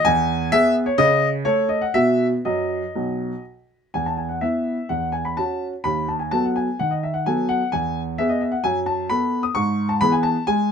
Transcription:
grand piano
0.05 E2 G#5
0.52 B3 G#4 E5
0.86 C#5
0.98 C#3 D#5
1.45 A3 A4 C#5
1.69 D#5
1.82 F#5
1.94 B2 B3 F#4 E5
2.45 F#2 D#5
2.95 B1
3.94 E2 G#5
4.06 A5
4.17 G#5
4.29 F#5
4.41 B3 E4 E5
4.89 E2 F#5
5.12 G#5
5.25 B5
5.37 C#4 F#4 A5
5.84 D#2 B5
6.08 A5
6.19 G#5
6.31 F#3 B3 A4 A5
6.44 F#5
6.56 G#5
6.79 D#3 F#5
6.91 D#5
7.03 E5
7.14 F#5
7.26 F#3 B3 A4 G#5
7.49 F#5
7.72 E2 G#5
8.18 B3 G#4 E5
8.29 D#5
8.41 E5
8.52 F#5
8.64 F#2 G#5
8.86 A5
9.10 B3 A4 B5
9.43 D#6
9.55 G#2 C#6
9.89 A5
10.01 E3 B3 G#4 B5
10.12 G#5
10.23 A5
10.47 G#3 G#5

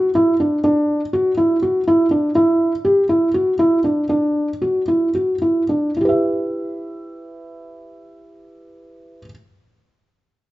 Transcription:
felt piano
0.15 E4
0.40 D4
0.64 D4
1.13 F#4
1.37 E4
1.63 F#4
1.88 E4
2.11 D4
2.35 E4
2.85 G4
3.09 E4
3.34 F#4
3.59 E4
3.84 D4
4.09 D4
4.62 F#4
4.88 E4
5.15 F#4
5.42 E4
5.69 D4
5.97 E4
6.01 G4
6.05 B4 E5

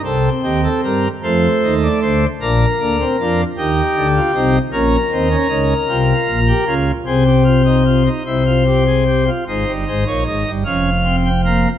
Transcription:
pipe organ
0.04 C2 C3 C4 A4
0.43 D#2 D#3 G4
0.64 A4
0.83 G2 G3 A#4
1.23 F2 F3 A3 C5
1.63 D#2 D#3
1.83 D5
2.02 D2 D3 C5
2.41 A#1 A#2 D4 A#4
2.80 D2 D3 A#3
3.00 C4
3.20 F2 F3 D4
3.57 D#2 D#3 D#4 G4
3.96 D2 D3
4.15 F4
4.35 C2 C3 D#4
4.72 A#1 A#2 C#4 A#4
5.12 D#2 D#3 C4
5.30 C#4
5.48 C#2 C#3 D#4
5.88 C2 C3 F4
6.28 A#1 A#2
6.47 G4
6.67 C#2 C#3 F4
7.05 C2 C3 G#4 C5
7.26 G4
7.44 F4
7.65 D#4
7.85 F4
8.06 D#4
8.26 C2 C3 E4 C5
8.46 F4
8.66 G4
8.87 G#4
9.07 G4
9.27 F4
9.47 G#1 G#2 D#4 C5
9.68 G1 G2
9.87 G#1 G#2 C5
10.06 A#1 A#2 C#5
10.27 G#1 G#2 D#5
10.47 G1 G2
10.65 F1 F2 C#4 F5
11.04 C4
11.25 G5
11.45 A#3 F5

